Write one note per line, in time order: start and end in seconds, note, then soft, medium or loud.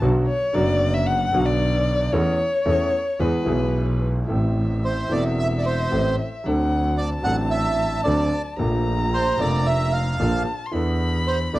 0.00 0.23 B1 medium
0.00 0.24 B1 medium
0.00 0.24 B2 medium
0.00 0.23 D3 medium
0.00 0.24 F#3 medium
0.00 0.24 B3 medium
0.00 0.24 F#4 medium
0.28 0.56 C#5 medium
0.53 1.29 F#1 medium
0.53 1.30 F#1 medium
0.53 1.30 F#2 medium
0.53 1.29 D3 medium
0.53 1.29 F#3 medium
0.53 1.30 B3 medium
0.53 1.31 F#4 medium
0.53 0.95 D5 medium
0.94 1.08 E5 medium
1.07 1.47 F#5 medium
1.32 2.08 B1 medium
1.32 2.09 B1 medium
1.32 2.09 B2 medium
1.32 2.08 D3 medium
1.32 2.08 F#3 medium
1.32 2.09 B3 medium
1.32 2.10 F#4 medium
1.46 2.14 D5 medium
2.12 2.35 E2 medium
2.12 2.35 E3 medium
2.12 2.35 A3 medium
2.12 2.35 C#4 medium
2.12 2.35 A4 medium
2.12 3.22 C#5 loud
2.66 2.89 E2 medium
2.66 2.89 E3 medium
2.66 2.89 A3 medium
2.66 2.89 C#4 medium
2.66 2.89 A4 medium
3.20 3.43 E2 medium
3.20 3.43 E3 medium
3.20 3.43 G#3 medium
3.20 3.43 B3 medium
3.20 3.43 G#4 medium
3.20 4.03 B4 medium
3.45 4.26 B1 medium
3.45 4.27 B1 medium
3.45 4.26 B2 medium
3.45 4.25 E3 medium
3.45 4.26 G#3 medium
3.45 4.26 B3 medium
3.45 4.27 G#4 medium
4.28 5.07 A1 medium
4.28 5.08 A1 medium
4.28 5.07 A2 medium
4.28 5.06 E3 medium
4.28 5.07 A3 medium
4.28 5.08 C4 soft
4.28 5.08 A4 medium
4.28 6.48 E5 medium
4.85 5.13 C5 medium
5.09 5.88 E1 medium
5.09 5.88 E2 medium
5.09 5.87 E3 medium
5.09 5.88 A3 medium
5.09 5.88 C4 medium
5.09 5.24 D5 medium
5.13 5.89 A4 medium
5.39 5.48 E5 medium
5.59 5.66 D5 soft
5.66 6.15 C5 medium
5.91 6.14 A1 medium
5.91 6.15 A1 medium
5.91 6.14 A2 medium
5.91 6.14 E3 medium
5.91 6.14 A3 medium
5.91 6.14 C4 medium
5.91 6.15 A4 medium
6.44 7.21 D2 medium
6.44 7.21 D3 medium
6.44 7.20 F#3 medium
6.44 7.21 C4 medium
6.44 7.22 D4 medium
6.44 7.01 F#5 medium
6.48 7.22 A4 medium
6.98 7.10 D5 medium
6.98 8.58 A5 medium
7.22 8.01 A1 medium
7.22 8.01 A2 medium
7.22 8.00 F#3 medium
7.22 8.01 C4 medium
7.22 8.01 D4 medium
7.22 7.36 F#5 medium
7.27 8.02 A4 medium
7.51 8.01 E5 medium
8.04 8.28 D2 medium
8.04 8.28 D3 medium
8.04 8.27 F#3 medium
8.04 8.28 C4 medium
8.04 8.28 D4 medium
8.04 8.28 A4 medium
8.04 8.42 D5 medium
8.57 9.35 A#1 medium
8.57 9.35 A#2 medium
8.57 9.34 F3 medium
8.57 9.35 A#3 medium
8.57 9.35 D4 medium
8.57 10.15 A#5 medium
8.61 9.36 A3 medium
9.14 9.40 C5 medium
9.37 10.15 F1 medium
9.37 10.15 F2 medium
9.37 10.14 F3 medium
9.37 10.15 A#3 medium
9.37 10.16 D4 medium
9.37 9.67 D5 medium
9.41 10.16 A3 medium
9.66 9.94 E5 medium
9.93 10.43 F5 medium
10.19 10.42 A#1 medium
10.19 10.42 A#2 medium
10.19 10.42 F3 medium
10.19 10.42 A#3 medium
10.19 10.42 D4 medium
10.19 10.42 A4 medium
10.19 10.67 A5 medium
10.66 10.74 C6 medium
10.72 11.50 E2 medium
10.72 11.50 E3 medium
10.72 11.50 B3 medium
10.72 11.50 D4 medium
10.72 11.51 A4 medium
10.72 11.59 B5 medium
11.27 11.39 C5 medium
11.53 11.59 B1 medium
11.53 11.59 B2 medium
11.53 11.59 E3 medium
11.53 11.59 B3 medium
11.53 11.59 D4 medium
11.53 11.59 A4 medium
11.53 11.59 D5 medium